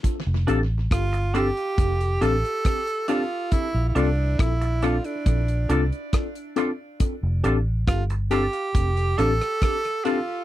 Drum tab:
HH |x-x-xxxxxxxxxxx-|x-x-xxxxxxxxxxx-|x-x-xxxxxxxxxxx-|
SD |----r-------r---|----r-------r---|----r------rr---|
BD |o---o---o---o---|o---o---o---o---|o---o---o---o---|